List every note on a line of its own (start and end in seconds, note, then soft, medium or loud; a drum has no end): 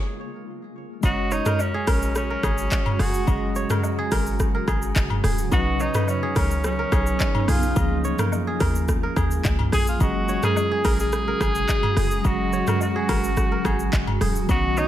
0.00 0.86 G#4 medium
0.00 0.49 A#4 medium
0.00 0.78 C#5 medium
1.01 1.41 F#1 loud
1.01 14.45 C#3 medium
1.01 7.72 F#3 medium
1.01 3.22 G#3 medium
1.01 5.48 G#3 medium
1.01 3.23 C#4 medium
1.01 5.48 F#4 medium
1.01 3.24 F#4 medium
1.01 1.34 F#4 loud
1.01 2.11 D#5 medium
1.01 kick loud
1.01 high agogo medium
1.01 shaker medium
1.06 3.25 C#5 medium
1.31 1.62 D#4 loud
1.31 2.46 C#5 medium
1.31 shaker medium
1.46 1.87 A#4 medium
1.46 cross-stick loud
1.46 mid tom loud
1.46 high agogo medium
1.46 shaker medium
1.59 1.88 C#4 medium
1.59 low woodblock medium
1.59 shaker medium
1.74 2.43 G#4 medium
1.87 2.36 A#1 medium
1.87 2.14 C#4 medium
1.87 2.30 A#4 medium
1.87 kick medium
1.87 cross-stick loud
1.87 open hi-hat medium
1.87 high agogo medium
1.87 shaker medium
2.02 shaker medium
2.15 3.02 C#4 loud
2.15 cross-stick medium
2.15 shaker medium
2.30 3.58 A#4 medium
2.43 2.68 G#1 medium
2.43 2.99 G#4 medium
2.43 kick loud
2.43 cross-stick loud
2.43 high agogo medium
2.43 shaker medium
2.58 shaker medium
2.71 kick loud
2.71 clap loud
2.71 low woodblock medium
2.71 shaker medium
2.86 mid tom medium
2.86 high agogo medium
2.99 3.24 F1 loud
2.99 3.56 F#4 loud
2.99 3.98 G#4 medium
2.99 cross-stick medium
2.99 open hi-hat medium
2.99 shaker medium
3.14 shaker medium
3.25 3.65 F#1 loud
3.25 5.47 G#3 medium
3.25 5.48 C#4 medium
3.25 5.48 F#4 medium
3.25 4.35 D#5 medium
3.25 kick loud
3.25 high agogo medium
3.25 shaker medium
3.30 5.49 G#4 medium
3.56 4.71 C#5 medium
3.56 shaker medium
3.70 4.12 A#4 medium
3.70 cross-stick loud
3.70 mid tom loud
3.70 high agogo medium
3.70 shaker medium
3.83 low woodblock medium
3.83 shaker medium
3.99 4.68 G#4 medium
4.12 4.61 G#1 medium
4.12 4.54 A#4 medium
4.12 kick loud
4.12 cross-stick medium
4.12 open hi-hat medium
4.12 high agogo medium
4.12 shaker medium
4.27 shaker medium
4.40 kick loud
4.40 cross-stick medium
4.40 shaker medium
4.55 5.82 A#4 medium
4.68 4.92 G#1 loud
4.68 5.24 G#4 medium
4.68 kick medium
4.68 cross-stick medium
4.68 high agogo medium
4.68 shaker medium
4.82 shaker medium
4.96 5.20 F#1 loud
4.96 kick loud
4.96 clap medium
4.96 low woodblock medium
4.96 shaker medium
5.10 mid tom medium
5.10 high agogo medium
5.24 5.48 D#1 loud
5.24 6.22 G#4 medium
5.24 cross-stick medium
5.24 open hi-hat medium
5.24 shaker medium
5.38 shaker medium
5.49 5.89 B1 loud
5.49 7.71 F#3 medium
5.49 7.74 B3 medium
5.49 7.72 C#4 medium
5.49 7.74 D#4 medium
5.49 7.73 D#4 medium
5.49 5.83 F#4 loud
5.49 6.59 D#5 medium
5.49 kick loud
5.49 high agogo medium
5.49 shaker medium
5.54 7.74 B4 medium
5.80 6.09 D#4 loud
5.80 6.95 C#5 medium
5.80 shaker medium
5.94 6.42 B4 medium
5.94 cross-stick loud
5.94 mid tom medium
5.94 high agogo medium
5.94 shaker medium
6.08 6.35 C#4 loud
6.08 low woodblock medium
6.08 shaker medium
6.23 6.92 G#4 medium
6.36 6.85 C#2 loud
6.36 6.63 C#4 medium
6.36 6.79 A#4 medium
6.36 kick loud
6.36 cross-stick medium
6.36 open hi-hat medium
6.36 high agogo medium
6.36 shaker medium
6.51 shaker medium
6.64 7.51 C#4 loud
6.64 cross-stick medium
6.64 shaker medium
6.79 8.06 A#4 medium
6.92 7.17 B1 medium
6.92 7.48 G#4 medium
6.92 kick loud
6.92 cross-stick loud
6.92 high agogo medium
6.92 shaker medium
7.07 shaker medium
7.20 kick loud
7.20 clap loud
7.20 low woodblock medium
7.20 shaker medium
7.35 mid tom medium
7.35 high agogo medium
7.48 7.73 B1 medium
7.48 8.05 F4 loud
7.48 8.47 G#4 medium
7.48 cross-stick medium
7.48 open hi-hat medium
7.48 shaker medium
7.63 shaker medium
7.74 8.13 C#2 loud
7.74 7.82 E3 medium
7.74 9.98 G#3 medium
7.74 9.96 A#3 medium
7.74 9.98 A#3 medium
7.74 9.97 C#4 medium
7.74 9.98 F4 medium
7.74 8.84 D#5 medium
7.74 kick loud
7.74 high agogo medium
7.74 shaker medium
7.79 9.99 F3 medium
7.79 9.98 G#4 medium
8.04 9.19 C#5 medium
8.04 shaker medium
8.19 8.60 A#4 medium
8.19 cross-stick loud
8.19 mid tom medium
8.19 high agogo medium
8.19 shaker medium
8.32 low woodblock medium
8.32 shaker medium
8.47 9.16 G#4 medium
8.60 9.09 D#2 loud
8.60 9.03 A#4 medium
8.60 kick loud
8.60 cross-stick medium
8.60 open hi-hat medium
8.60 high agogo medium
8.60 shaker medium
8.75 shaker medium
8.88 kick medium
8.88 cross-stick medium
8.88 shaker medium
9.03 10.31 A#4 medium
9.16 9.41 D#2 medium
9.16 9.72 G#4 medium
9.16 kick loud
9.16 cross-stick medium
9.16 high agogo medium
9.16 shaker medium
9.31 shaker medium
9.44 9.69 C#2 loud
9.44 kick loud
9.44 clap medium
9.44 low woodblock medium
9.44 shaker medium
9.59 mid tom medium
9.59 high agogo medium
9.72 9.97 A#1 medium
9.72 10.71 G#4 medium
9.72 9.87 G#4 loud
9.72 cross-stick medium
9.72 open hi-hat medium
9.72 shaker medium
9.87 10.03 F4 loud
9.87 shaker medium
9.98 10.38 F#1 loud
9.98 12.20 F#3 medium
9.98 14.88 F#3 medium
9.98 12.21 G#3 medium
9.98 14.45 G#3 medium
9.98 12.21 C#4 medium
9.98 14.45 F#4 medium
9.98 10.44 F#4 loud
9.98 11.08 D#5 medium
9.98 kick loud
9.98 high agogo medium
9.98 shaker medium
10.03 12.22 G#4 medium
10.29 11.44 C#5 medium
10.29 shaker medium
10.43 10.96 G#4 loud
10.43 10.85 A#4 medium
10.43 cross-stick loud
10.43 mid tom medium
10.43 high agogo medium
10.43 shaker medium
10.56 low woodblock medium
10.56 shaker medium
10.72 11.41 G#4 medium
10.85 11.34 A#1 medium
10.85 11.27 A#4 medium
10.85 kick loud
10.85 cross-stick medium
10.85 open hi-hat medium
10.85 high agogo medium
10.85 shaker medium
11.00 12.27 G#4 loud
11.00 shaker medium
11.13 cross-stick medium
11.13 shaker medium
11.28 12.55 A#4 medium
11.41 11.65 G#1 medium
11.41 11.97 G#4 medium
11.41 kick loud
11.41 cross-stick loud
11.41 high agogo medium
11.41 shaker medium
11.55 shaker medium
11.68 kick loud
11.68 clap medium
11.68 low woodblock medium
11.68 shaker medium
11.83 mid tom medium
11.83 high agogo medium
11.97 12.21 F1 loud
11.97 12.95 G#4 medium
11.97 cross-stick medium
11.97 open hi-hat medium
11.97 shaker medium
12.11 shaker medium
12.22 12.62 F#1 loud
12.22 14.44 F#3 medium
12.22 14.45 G#3 medium
12.22 14.46 C#4 medium
12.22 12.68 F#4 loud
12.22 13.32 D#5 medium
12.22 kick loud
12.22 high agogo medium
12.22 shaker medium
12.27 14.46 G#4 medium
12.53 13.68 C#5 medium
12.53 shaker medium
12.67 12.81 F#4 medium
12.67 13.09 A#4 medium
12.67 cross-stick medium
12.67 mid tom medium
12.67 high agogo medium
12.67 shaker medium
12.80 14.18 F#4 medium
12.80 low woodblock medium
12.80 shaker medium
12.96 13.65 G#4 medium
13.09 13.58 G#1 medium
13.09 13.51 A#4 medium
13.09 kick loud
13.09 cross-stick medium
13.09 open hi-hat medium
13.09 high agogo medium
13.09 shaker medium
13.24 shaker medium
13.37 kick medium
13.37 cross-stick medium
13.37 shaker medium
13.52 14.79 A#4 medium
13.65 13.89 G#1 medium
13.65 14.21 G#4 medium
13.65 kick loud
13.65 cross-stick medium
13.65 high agogo medium
13.65 shaker medium
13.79 shaker medium
13.93 14.18 F#1 loud
13.93 kick loud
13.93 clap loud
13.93 low woodblock medium
13.93 shaker medium
14.07 mid tom medium
14.07 high agogo medium
14.21 14.46 D#1 medium
14.21 14.88 G#4 medium
14.21 cross-stick medium
14.21 open hi-hat medium
14.21 shaker medium
14.36 shaker medium
14.47 14.86 B1 loud
14.47 14.88 C#3 medium
14.47 14.88 D#3 medium
14.47 14.88 B3 medium
14.47 14.88 C#4 medium
14.47 14.88 D#4 medium
14.47 14.80 F#4 loud
14.47 14.88 D#5 medium
14.47 kick loud
14.47 high agogo medium
14.47 shaker medium
14.52 14.88 F#4 medium
14.77 14.88 D#4 loud
14.77 14.88 C#5 medium
14.77 shaker medium